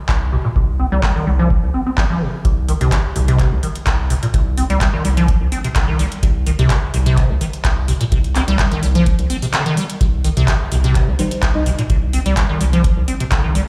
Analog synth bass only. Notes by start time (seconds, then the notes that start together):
0.09 C2
0.56 C2
0.92 C2
1.27 C2
1.63 C2
1.98 A#1
2.45 C2
2.81 C2
3.16 C2
3.52 C2
3.87 C2
4.34 C2
4.70 C2
5.05 C2
5.41 C2
5.76 C2
6.23 C2
6.59 C2
6.94 C2
7.30 C2
7.65 C2
8.12 C2
8.48 C2
8.83 C2
9.19 C2
10.01 C2
10.37 C2
10.72 C2
11.08 C2
11.43 C2
11.90 C2
12.26 C2
12.61 C2
12.97 C2
13.32 C2